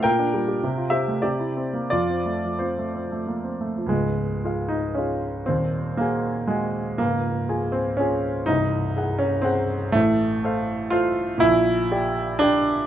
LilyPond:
\new Staff \with { instrumentName = "Grand piano" } { \time 3/4 \key f \major \tempo 4 = 119 << { <bes' g''>4. <g' e''>8 <g' d''>4 | <f' d''>4 <f' c''>4 r4 | \key des \major aes4. ees'8 des'4 | c'4 bes4 aes4 |
bes4. c'8 des'4 | ees'4. des'8 c'4 | \key f \major a2 f'4 | e'2 d'4 | } \\ { bes,16 d'16 g16 g'16 c16 f'16 c'16 a16 c16 e'16 c'16 bes16 | f,16 c'16 a16 f16 c'16 a16 c'16 a16 bes16 c'16 a16 f16 | <des,, des,>4 <f' aes' f''>4 <f' aes' f''>4 | <ees,, ees,>4 <ges' aes' aes''>4 <ges' aes' aes''>4 |
<des,, des,>4 <f' aes' aes''>4 <f' aes' aes''>4 | <c,, c,>4 <aes' ges''>4 <aes' ges''>4 | <a,, a,>4 <a' c'' f''>4 <a' c'' f''>4 | <bes,, bes,>4 <g' d'' g''>4 <g' d'' g''>4 | } >> }